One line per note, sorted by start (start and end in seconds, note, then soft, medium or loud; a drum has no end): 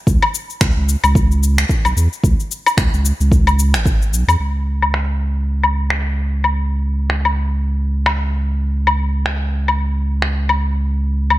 0.07 0.19 C#2 medium
0.07 kick medium
0.07 cabasa soft
0.22 low woodblock medium
0.35 cabasa medium
0.50 cabasa soft
0.61 0.73 C#2 medium
0.61 finger snap medium
0.61 kick loud
0.61 cabasa soft
0.77 0.96 C#2 medium
0.89 cabasa medium
1.04 1.65 C#2 medium
1.04 cabasa soft
1.04 low woodblock medium
1.15 kick medium
1.15 cabasa soft
1.32 cabasa soft
1.43 cabasa medium
1.58 finger snap medium
1.58 cabasa soft
1.69 kick medium
1.69 cabasa soft
1.85 1.94 B1 medium
1.85 cabasa soft
1.85 low woodblock medium
1.97 2.08 E2 loud
1.97 cabasa medium
2.13 cabasa soft
2.23 2.35 C#2 medium
2.23 kick medium
2.23 cabasa soft
2.40 cabasa soft
2.51 cabasa medium
2.66 cabasa soft
2.66 low woodblock medium
2.77 2.89 C#2 medium
2.77 finger snap medium
2.77 kick loud
2.77 cabasa soft
2.93 3.13 C#2 medium
2.93 cabasa soft
3.05 cabasa medium
3.20 3.76 C#2 medium
3.20 cabasa soft
3.32 kick loud
3.32 cabasa soft
3.47 cabasa soft
3.47 low woodblock medium
3.59 cabasa medium
3.74 4.14 G#1 medium
3.74 finger snap medium
3.74 cabasa soft
3.86 kick loud
3.86 cabasa soft
4.02 cabasa soft
4.12 4.24 B1 loud
4.12 cabasa medium
4.28 4.37 E2 medium
4.28 cabasa soft
4.28 low woodblock medium
4.40 11.39 C#2 medium
4.82 low woodblock medium
4.94 finger snap medium
5.63 low woodblock medium
5.90 finger snap medium
6.44 low woodblock medium
7.10 finger snap medium
7.25 low woodblock medium
8.06 finger snap medium
8.06 low woodblock medium
8.87 low woodblock medium
9.26 finger snap medium
9.68 low woodblock medium
10.22 finger snap medium
10.49 low woodblock medium
11.30 low woodblock medium